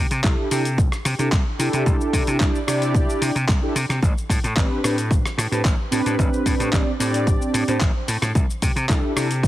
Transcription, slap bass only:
0.11 0.20 C3 loud
0.24 0.34 C2 loud
0.51 0.80 C3 medium
0.78 0.88 C2 medium
1.05 1.15 C3 medium
1.19 1.28 C3 medium
1.32 1.42 C2 loud
1.59 1.69 C3 medium
1.73 1.82 C3 medium
1.86 1.96 C2 loud
2.13 2.23 C3 loud
2.27 2.36 C3 loud
2.40 2.50 C2 medium
2.68 2.96 C3 medium
2.95 3.04 C2 medium
3.22 3.31 C3 medium
3.35 3.44 C3 medium
3.48 3.58 C2 medium
3.75 3.85 C3 loud
3.89 3.98 C3 medium
4.03 4.12 A1 medium
4.30 4.39 A2 loud
4.44 4.53 A2 loud
4.57 4.66 A1 loud
4.84 5.12 A2 medium
5.11 5.20 A1 medium
5.38 5.47 A2 medium
5.52 5.61 A2 medium
5.65 5.74 A1 loud
5.92 6.01 A2 medium
6.06 6.15 A2 medium
6.19 6.28 A1 loud
6.46 6.55 A2 medium
6.59 6.69 A2 loud
6.73 6.82 A1 loud
7.00 7.28 A2 medium
7.27 7.36 A1 medium
7.54 7.63 A2 medium
7.68 7.77 A2 medium
7.81 7.90 A1 loud
8.08 8.17 A2 medium
8.22 8.31 A2 medium
8.35 8.44 C2 loud
8.62 8.72 C3 loud
8.76 8.85 C3 loud
8.89 8.99 C2 loud
9.16 9.45 C3 medium
9.43 9.48 C2 medium

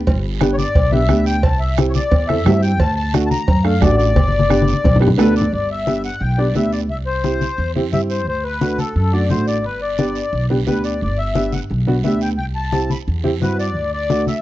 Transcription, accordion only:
0.53 0.56 C#5 medium
0.58 0.91 D5 loud
0.91 1.25 E5 loud
1.26 1.43 G5 loud
1.43 1.60 A5 medium
1.59 1.77 E5 medium
1.90 1.92 C#5 medium
1.95 2.28 D5 medium
2.28 2.61 E5 loud
2.62 2.79 G5 medium
2.79 2.94 A5 medium
2.96 3.13 A5 loud
3.26 3.29 A5 medium
3.30 3.64 A#5 loud
3.64 3.81 F5 medium
3.81 3.96 D5 medium
3.97 4.98 D5 loud
5.18 5.34 B4 loud
5.36 5.52 D5 medium
5.53 5.69 D5 medium
5.71 6.02 E5 medium
6.05 6.22 F#5 medium
6.21 6.39 G5 medium
6.38 6.54 D5 medium
6.56 6.72 E5 medium
6.72 6.80 D5 medium
6.90 6.98 E5 medium
7.06 7.71 C5 medium
7.93 8.01 E5 medium
8.11 8.26 C5 medium
8.28 8.44 C5 medium
8.44 8.80 B4 medium
8.78 8.94 A4 medium
8.96 9.13 A4 medium
9.13 9.29 D5 medium
9.30 9.46 C5 medium
9.47 9.65 D5 medium
9.65 9.81 B4 medium
9.82 10.46 D5 medium
10.67 10.83 B4 medium
10.84 11.01 D5 medium
11.02 11.18 D5 medium
11.18 11.54 E5 medium
11.53 11.60 F#5 medium
12.04 12.20 E5 medium
12.22 12.29 G5 medium
12.38 12.46 G5 medium
12.55 12.91 A5 medium
12.91 12.98 B5 medium
13.42 13.58 B4 medium
13.59 13.91 D5 medium
13.93 14.25 D5 loud
14.28 14.42 E5 medium

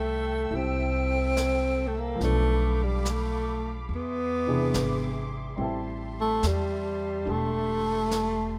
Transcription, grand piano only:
0.00 2.18 G3 soft
0.00 0.49 E4 soft
0.00 2.21 F4 soft
0.00 2.23 A4 soft
0.50 2.20 E4 soft
0.50 2.21 G4 soft
2.15 3.87 F3 soft
2.15 3.89 B3 soft
2.23 3.91 D4 soft
2.23 3.93 A4 soft
4.46 5.58 C3 soft
4.46 5.58 E3 soft
4.46 5.58 D4 soft
4.46 5.59 G#4 soft
5.56 8.59 G3 soft
5.56 8.59 C4 soft
5.56 8.59 E4 soft
5.61 7.27 A4 medium
7.25 8.59 D4 soft
7.25 8.59 G4 soft
7.25 8.59 A4 soft

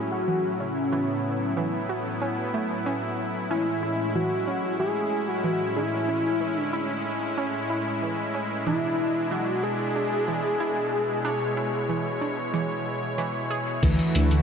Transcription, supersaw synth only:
0.00 8.63 A2 medium
0.00 3.46 F#3 medium
0.00 0.90 C#4 medium
0.00 13.79 E4 medium
0.92 3.48 B3 medium
3.51 13.79 G#3 medium
3.51 8.63 C#4 medium
8.67 13.79 B2 medium
8.67 11.22 D4 medium
11.25 13.80 C#5 medium
13.83 14.42 D3 medium
13.83 14.42 A3 medium
13.83 14.42 E4 medium
13.83 14.42 F#4 medium

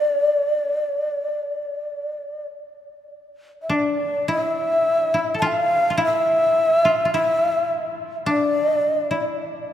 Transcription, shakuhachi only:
0.00 2.47 D5 loud
3.62 3.76 E5 medium
3.74 4.30 D5 medium
4.31 5.35 E5 medium
5.39 5.49 A5 medium
5.47 6.02 F5 loud
6.05 7.11 E5 loud
7.14 7.96 E5 medium
8.28 8.87 D5 medium
8.87 8.98 D#5 medium
8.98 9.34 D5 medium

